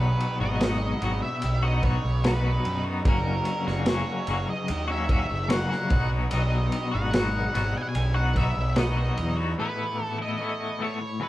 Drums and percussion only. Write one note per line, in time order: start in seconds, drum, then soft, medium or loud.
0.20 ride medium
0.61 snare medium
0.61 ride medium
1.02 ride medium
1.42 ride medium
1.83 kick medium
1.83 ride soft
2.24 snare loud
2.24 ride medium
2.65 ride medium
3.05 kick loud
3.05 ride medium
3.45 ride medium
3.67 snare soft
3.86 snare loud
3.86 ride medium
4.27 ride medium
4.68 ride medium
5.09 kick medium
5.09 ride medium
5.50 snare loud
5.50 ride medium
5.72 snare soft
5.90 kick medium
5.90 ride medium
6.31 ride medium
6.72 ride medium
7.13 snare loud
7.13 ride medium
7.55 ride medium
7.95 ride medium
8.36 kick medium
8.36 ride medium
8.76 snare loud
8.76 ride medium
9.17 ride medium